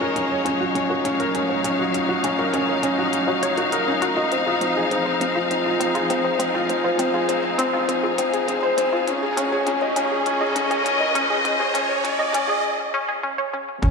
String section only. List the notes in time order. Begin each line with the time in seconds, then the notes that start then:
Already playing: F#3 D#4 G#4 C#5 D#5 F5
4.32 F3
5.29 G#4
9.07 C#3
9.34 C#4
10.38 D#5